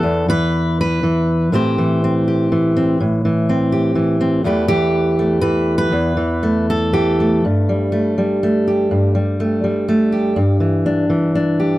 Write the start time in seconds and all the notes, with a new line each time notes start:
Already playing: E3 A4
0.03 E2
0.28 E3 B4
0.81 B4
1.03 E3
1.52 A2 E3 C4 G4 C5
1.78 E3
2.04 C4
2.28 G4
2.52 E3
2.77 C4
3.00 A2
3.25 E3
3.49 C4
3.72 G4
3.95 E3
4.21 C4
4.44 E2 E3 A3 G4 B4
4.68 E3 G4
5.19 A3
5.41 E3 B4
5.78 B4
5.92 E2
6.17 E3
6.43 A3
6.70 A4
6.93 E3 G4
7.20 A3
7.45 G2
7.69 G3
7.92 A3
8.18 G3
8.43 A3
8.68 G4
8.91 G2
9.15 G3
9.40 A3
9.64 G3
9.88 A3
10.12 G4
10.36 G2
10.60 E3
10.86 D4
11.10 E3
11.35 D4
11.60 G4